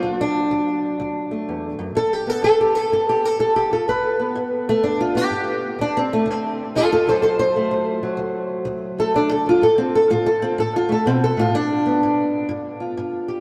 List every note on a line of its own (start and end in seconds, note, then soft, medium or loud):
0.00 0.48 D2 medium
0.00 1.96 F#3 soft
0.00 0.21 F4 medium
0.21 1.64 D4 loud
0.51 0.96 D2 medium
1.00 1.44 D2 medium
1.31 1.96 A3 soft
1.49 1.78 E2 medium
1.79 1.95 F#2 medium
1.95 2.40 G2 medium
1.95 2.13 A4 loud
2.13 2.30 G4 medium
2.27 3.85 B3 soft
2.27 2.43 A4 loud
2.42 2.88 G2 medium
2.42 2.60 A4 loud
2.61 2.75 G4 medium
2.75 2.91 A4 medium
2.92 3.36 G2 medium
2.92 3.08 A4 medium
3.09 3.25 G4 medium
3.25 3.39 A4 loud
3.39 3.84 G2 medium
3.39 3.56 A4 loud
3.56 3.72 G4 medium
3.71 3.86 F4 soft
3.71 3.88 A4 medium
3.88 4.32 G2 medium
3.88 4.36 B4 loud
4.19 5.14 B3 soft
4.35 4.80 G2 medium
4.69 4.84 A3 loud
4.83 5.28 G2 medium
4.83 4.99 D4 medium
5.01 5.16 F4 medium
5.15 5.77 B3 soft
5.15 5.80 G4 medium
5.30 5.75 G2 medium
5.79 6.23 D2 medium
5.79 5.96 D4 loud
5.97 6.12 C4 medium
6.13 6.28 A3 medium
6.26 6.71 D2 medium
6.30 6.60 C4 loud
6.75 7.20 D2 medium
6.75 6.91 F4 medium
6.75 6.92 A4 loud
6.92 7.07 F4 loud
6.92 7.07 A4 medium
7.07 8.02 F#3 soft
7.07 7.15 A4 medium
7.07 7.22 C5 loud
7.22 7.67 D2 medium
7.22 7.27 A4 medium
7.22 7.38 C5 loud
7.39 8.35 C5 loud
7.56 8.97 A3 soft
7.71 8.15 D2 medium
8.03 9.45 F#3 soft
8.17 8.62 D2 medium
8.65 9.10 D2 medium
8.98 9.46 A3 soft
8.98 9.15 A4 loud
9.14 9.58 D2 medium
9.14 9.31 D4 loud
9.32 9.47 A4 medium
9.46 9.62 F#3 soft
9.46 9.63 F4 medium
9.62 10.06 A2 medium
9.62 9.78 A4 loud
9.78 9.94 C4 medium
9.95 10.10 A4 medium
10.10 10.54 A2 medium
10.10 10.26 F4 medium
10.26 10.42 A4 loud
10.42 10.58 C4 medium
10.58 11.02 A2 medium
10.58 10.75 A4 medium
10.76 10.91 F4 medium
10.89 11.05 A3 soft
10.89 11.07 A4 loud
11.06 11.37 B2 medium
11.06 11.22 C4 loud
11.24 11.38 A4 loud
11.37 11.53 A2 medium
11.37 11.54 F4 loud
11.54 11.98 G2 medium
11.54 12.50 D4 loud
11.86 13.40 B3 soft
12.03 12.47 G2 medium
12.49 12.93 G2 medium
12.80 13.40 F4 soft
12.97 13.40 G2 medium
13.28 13.40 G4 soft